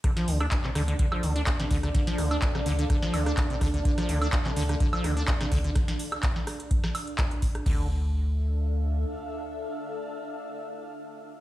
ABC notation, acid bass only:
X:1
M:4/4
L:1/16
Q:"Swing 16ths" 1/4=126
K:Dm
V:1 name="Acid bass" clef=bass
D, F, D, D z C, D, D, D, F, D, D z C, D, D, | D, F, D, D z C, D, D, D, F, D, D z C, D, D, | D, F, D, D z C, D, D, D, F, D, D z C, D, D, | z16 |
D,2 z12 z2 | z16 |]